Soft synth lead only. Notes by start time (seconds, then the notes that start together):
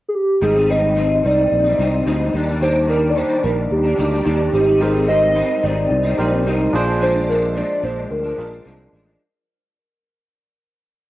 0.09 G#4
0.15 G4
0.43 G#4
0.70 D#5
1.26 D5
2.62 C5
2.90 A#4
3.10 D5
3.17 C5
3.44 A#4
3.72 G4
4.54 G4
4.81 G#4
5.09 D#5
5.64 D5
7.02 C5
7.29 A#4
7.57 D5
7.84 C5
8.11 A#4